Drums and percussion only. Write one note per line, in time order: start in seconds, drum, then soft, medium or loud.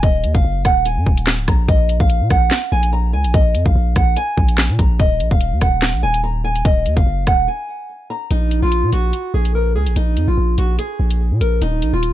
0.03 kick loud
0.03 closed hi-hat medium
0.24 closed hi-hat medium
0.35 kick loud
0.35 closed hi-hat soft
0.65 kick medium
0.65 cross-stick medium
0.65 closed hi-hat medium
0.86 closed hi-hat medium
1.06 kick medium
1.17 closed hi-hat medium
1.27 snare loud
1.27 clap loud
1.48 kick medium
1.48 cross-stick loud
1.48 closed hi-hat medium
1.69 kick loud
1.69 closed hi-hat medium
1.89 closed hi-hat medium
2.00 kick medium
2.10 closed hi-hat medium
2.30 kick medium
2.30 cross-stick medium
2.30 closed hi-hat medium
2.51 snare loud
2.51 clap medium
2.51 closed hi-hat medium
2.83 closed hi-hat medium
3.24 closed hi-hat medium
3.34 kick loud
3.34 closed hi-hat medium
3.55 closed hi-hat medium
3.66 kick medium
3.96 kick medium
3.96 cross-stick medium
3.96 closed hi-hat medium
4.17 closed hi-hat medium
4.38 kick medium
4.49 closed hi-hat medium
4.58 snare loud
4.58 clap loud
4.79 kick medium
4.79 closed hi-hat medium
5.00 kick loud
5.00 closed hi-hat medium
5.20 closed hi-hat medium
5.31 kick medium
5.41 closed hi-hat medium
5.61 kick medium
5.61 cross-stick medium
5.61 closed hi-hat medium
5.82 snare loud
5.82 clap medium
5.82 closed hi-hat medium
6.14 closed hi-hat medium
6.55 closed hi-hat medium
6.65 kick loud
6.65 closed hi-hat medium
6.86 closed hi-hat medium
6.97 kick medium
6.97 closed hi-hat soft
7.27 kick medium
7.27 cross-stick medium
7.27 closed hi-hat medium
8.31 closed hi-hat medium
8.51 closed hi-hat medium
8.72 closed hi-hat medium
8.92 closed hi-hat medium
9.13 closed hi-hat medium
9.45 closed hi-hat medium
9.87 closed hi-hat medium
9.96 closed hi-hat medium
10.17 closed hi-hat medium
10.58 closed hi-hat medium
10.79 closed hi-hat medium
11.11 closed hi-hat medium
11.41 closed hi-hat medium
11.62 closed hi-hat medium
11.82 closed hi-hat medium
12.03 closed hi-hat medium